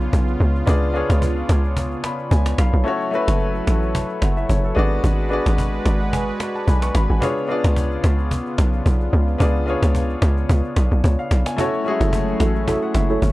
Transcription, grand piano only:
0.00 0.66 B3 medium
0.00 0.67 D4 medium
0.00 0.68 F4 medium
0.00 0.69 G#4 medium
0.00 0.97 C#5 loud
0.66 0.89 B3 medium
0.66 0.89 D4 medium
0.66 0.90 F4 medium
0.66 0.90 G#4 medium
0.66 0.91 D5 loud
0.93 1.82 B3 medium
0.93 1.82 D4 medium
0.93 1.83 F4 medium
0.93 1.83 G#4 medium
0.93 1.84 C#5 loud
2.04 2.29 B5 medium
2.31 2.57 G#5 medium
2.59 2.84 F5 medium
2.84 3.07 A3 medium
2.84 3.08 C#4 medium
2.84 3.08 E4 medium
2.84 3.09 F#4 medium
2.84 3.09 C#5 loud
3.11 4.00 A3 medium
3.11 4.00 C#4 medium
3.11 4.01 E4 medium
3.11 4.01 F#4 medium
3.11 3.96 B4 loud
4.22 4.36 F#5 medium
4.37 4.49 E5 medium
4.49 4.64 C#5 medium
4.64 4.90 A4 medium
4.75 5.20 B3 loud
4.75 5.21 D4 medium
4.75 5.21 F#4 medium
4.75 5.22 G#4 medium
4.75 5.22 D5 loud
5.29 6.18 B3 medium
5.29 6.19 D4 medium
5.29 6.19 F#4 medium
5.29 6.20 G#4 medium
5.29 5.84 D5 loud
5.86 6.00 D5 medium
6.01 6.12 F#5 medium
6.13 6.52 G#5 medium
6.55 6.67 A5 medium
6.68 6.82 G#5 medium
6.68 6.93 B5 medium
6.83 6.94 C#6 medium
6.95 7.09 B5 medium
7.10 7.36 G#5 medium
7.20 7.43 B3 medium
7.20 7.44 D4 medium
7.20 7.45 F4 medium
7.20 7.45 G#4 medium
7.24 7.45 C#5 loud
7.47 8.36 B3 medium
7.47 8.37 D4 medium
7.47 8.37 F4 medium
7.47 8.38 G#4 medium
7.47 8.38 D5 loud
9.38 9.62 B3 medium
9.38 9.62 D4 medium
9.38 9.63 F4 medium
9.38 9.63 G#4 medium
9.38 9.64 D5 loud
9.66 10.54 B3 medium
9.66 10.55 D4 medium
9.66 10.55 F4 medium
9.66 10.56 G#4 medium
9.66 10.56 C#5 loud
11.04 11.18 C#5 medium
11.19 11.45 F5 medium
11.46 11.72 G#5 medium
11.57 11.80 A3 medium
11.57 11.80 C#4 medium
11.57 11.81 E4 medium
11.57 11.81 F#4 medium
11.57 11.82 C#5 loud
11.84 11.92 G#3 medium
11.84 12.73 C#4 medium
11.84 12.74 E4 medium
11.84 12.74 F#4 medium
11.84 12.69 G#4 loud
11.90 12.76 A3 medium
12.68 12.82 E5 medium
12.83 12.94 F#5 medium
12.95 13.09 E5 medium
13.10 13.32 C#5 medium

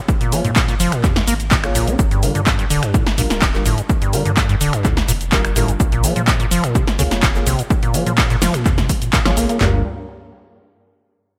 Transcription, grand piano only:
0.32 0.45 A#3 medium
0.32 0.45 F4 medium
0.32 0.45 G#4 medium
0.32 0.45 C#5 loud
1.64 1.73 A#3 medium
1.64 1.73 F4 medium
1.64 1.73 G#4 medium
1.64 1.73 C#5 loud
1.75 1.95 A#3 medium
1.75 1.95 F4 medium
1.75 1.95 G#4 medium
1.75 1.95 C#5 medium
2.23 2.35 G3 medium
2.23 2.35 D4 medium
2.23 2.35 F4 medium
2.23 2.35 A#4 medium
3.18 3.38 G3 medium
3.18 3.38 D4 medium
3.18 3.38 F4 medium
3.18 3.38 A#4 loud
3.54 3.66 G3 medium
3.54 3.66 D4 medium
3.54 3.66 F4 medium
3.54 3.66 A#4 medium
4.13 4.26 G3 medium
4.13 4.26 D4 medium
4.13 4.26 F4 medium
4.13 4.26 A#4 loud
5.32 5.45 G3 medium
5.32 5.45 D4 medium
5.32 5.45 F4 medium
5.32 5.45 A#4 loud
5.56 5.69 G3 loud
5.56 5.69 D4 medium
5.56 5.69 F4 medium
5.56 5.69 A#4 loud
6.04 6.16 A#3 medium
6.04 6.16 F4 medium
6.04 6.16 G#4 medium
6.04 6.16 C#5 medium
6.99 7.19 A#3 medium
6.99 7.19 F4 medium
6.99 7.19 G#4 medium
6.99 7.19 C#5 loud
7.35 7.47 A#3 medium
7.35 7.47 F4 medium
7.35 7.47 G#4 medium
7.35 7.47 C#5 medium
7.94 8.07 A#3 medium
7.94 8.07 F4 medium
7.94 8.07 G#4 medium
7.94 8.07 C#5 loud
9.26 9.35 A#3 medium
9.26 9.35 F4 medium
9.26 9.35 G#4 medium
9.26 9.35 C#5 loud
9.37 9.57 A#3 medium
9.37 9.57 F4 medium
9.37 9.57 G#4 medium
9.61 9.79 G3 medium
9.61 9.79 D4 medium
9.61 9.79 F4 medium
9.61 9.79 A#4 loud

